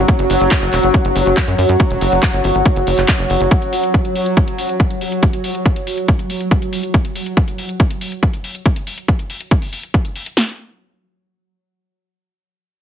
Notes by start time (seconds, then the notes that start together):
Already playing: F#3 C#4 F#4 C#5 F#5
0.08 kick, closed hi-hat
0.19 F#1, closed hi-hat
0.30 F#1, open hi-hat
0.41 F#1, closed hi-hat
0.51 kick, clap, closed hi-hat
0.62 F#1, closed hi-hat
0.73 E1, clap, open hi-hat
0.83 F#1, closed hi-hat
0.94 kick, closed hi-hat
1.05 F#1, closed hi-hat
1.16 F#1, open hi-hat
1.26 F#1, closed hi-hat
1.37 kick, clap, closed hi-hat
1.48 F#2, closed hi-hat
1.58 F#2, open hi-hat
1.69 F#2, closed hi-hat
1.80 kick, closed hi-hat
1.91 E1, closed hi-hat
2.01 F#1, open hi-hat
2.12 F#1, closed hi-hat
2.23 kick, clap, closed hi-hat
2.33 G1, closed hi-hat
2.44 G1, open hi-hat
2.55 G1, closed hi-hat
2.66 kick, closed hi-hat
2.76 F#1, closed hi-hat
2.87 F#1, open hi-hat
2.98 F#1, clap, closed hi-hat
3.08 kick, clap, closed hi-hat
3.19 F#1, closed hi-hat
3.30 F#1, open hi-hat
3.41 F#1, closed hi-hat
3.51 kick, closed hi-hat
3.62 closed hi-hat
3.73 open hi-hat
3.83 closed hi-hat
3.94 kick, closed hi-hat
4.05 closed hi-hat
4.16 open hi-hat
4.26 closed hi-hat
4.37 kick, closed hi-hat
4.48 closed hi-hat
4.58 open hi-hat
4.69 closed hi-hat
4.80 kick, closed hi-hat
4.91 closed hi-hat
5.01 open hi-hat
5.12 closed hi-hat
5.23 kick, closed hi-hat
5.33 closed hi-hat
5.44 open hi-hat
5.55 closed hi-hat
5.66 kick, closed hi-hat
5.76 closed hi-hat
5.87 open hi-hat
5.98 closed hi-hat
6.08 kick, closed hi-hat
6.19 closed hi-hat
6.30 open hi-hat
6.41 closed hi-hat
6.51 kick, closed hi-hat
6.62 closed hi-hat
6.73 open hi-hat
6.83 closed hi-hat
6.94 kick, closed hi-hat
7.05 closed hi-hat
7.16 open hi-hat
7.26 closed hi-hat
7.37 kick, closed hi-hat
7.48 closed hi-hat
7.58 open hi-hat
7.69 closed hi-hat
7.80 kick, closed hi-hat
7.91 closed hi-hat
8.01 open hi-hat
8.12 closed hi-hat
8.23 kick, closed hi-hat
8.33 closed hi-hat
8.44 open hi-hat
8.55 closed hi-hat
8.66 kick, closed hi-hat
8.76 closed hi-hat
8.87 open hi-hat
8.98 closed hi-hat
9.08 kick, closed hi-hat
9.19 closed hi-hat
9.30 open hi-hat
9.41 closed hi-hat
9.51 kick, closed hi-hat
9.62 open hi-hat
9.73 open hi-hat
9.83 closed hi-hat
9.94 kick, closed hi-hat
10.05 closed hi-hat
10.16 open hi-hat
10.26 closed hi-hat
10.37 snare